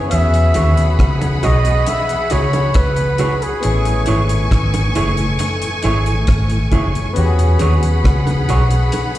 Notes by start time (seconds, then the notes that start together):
Already playing: B3 C#4 E4 G#4
0.08 B3 C#4 F#4 G#4 E5 F#5 B5, closed hi-hat
0.13 E2 G#4
0.33 E2 B2, closed hi-hat
0.54 D#2 G#3 C#4 F#4 G#4 C#5, closed hi-hat, high bongo
0.77 E2 B2, closed hi-hat
0.99 C#2, kick, cross-stick, closed hi-hat
1.21 E2 B2, closed hi-hat, high bongo
1.42 B1 G#3 C#4 F#4 G#4 C#5 D#5, closed hi-hat
1.65 E2 B2, closed hi-hat
1.86 E5, closed hi-hat, high bongo
2.09 E2 B2, closed hi-hat
2.30 C#2 G#3 C#4 F#4 G#4 C#5, closed hi-hat, high bongo
2.53 E2 B2, closed hi-hat, high bongo
2.74 C#2 B4, kick, cross-stick, closed hi-hat
2.96 E2 B2, closed hi-hat
3.18 G#3 C#4 F#4 G#4 C#5, closed hi-hat, high bongo, low bongo
3.42 G#4, closed hi-hat
3.60 A3 B3 C#4 G#5 C#6, closed hi-hat
3.64 A1 E4 G#4
3.85 A2 E3, closed hi-hat
4.06 G#1 A3 C#4 E4 G#4 C#5, closed hi-hat
4.29 A2 E3, closed hi-hat
4.51 G#1, kick, cross-stick, closed hi-hat
4.74 A2 E3, closed hi-hat, high bongo
4.95 F#1 A3 C#4 E4 G#4 C#5, closed hi-hat
5.17 A2 E3, closed hi-hat
5.39 closed hi-hat, high bongo
5.62 A2 E3, closed hi-hat
5.83 G#1 A3 C#4 E4 G#4 C#5, closed hi-hat, high bongo
6.06 A2 E3, closed hi-hat
6.27 G#1, kick, cross-stick, closed hi-hat
6.50 A2 E3, closed hi-hat
6.71 F#1 A3 C#4 E4 G#4 C#5, kick, closed hi-hat, high bongo, low bongo
6.95 A2 E3, closed hi-hat
7.13 E2 B3 C#4 G#4 F#5 B5, closed hi-hat
7.17 F#4 G4
7.26 G#4
7.39 E2 B2, closed hi-hat
7.59 D#2 G#3 C#4 F#4 G#4 C#5, closed hi-hat, high bongo
7.83 E2 B2, closed hi-hat
8.04 C#2, kick, cross-stick, closed hi-hat
8.27 E2 B2, closed hi-hat, high bongo
8.48 B1 G#3 C#4 F#4 G#4 C#5, closed hi-hat
8.71 E2 B2, closed hi-hat
8.92 closed hi-hat, high bongo
9.15 E2 B2, closed hi-hat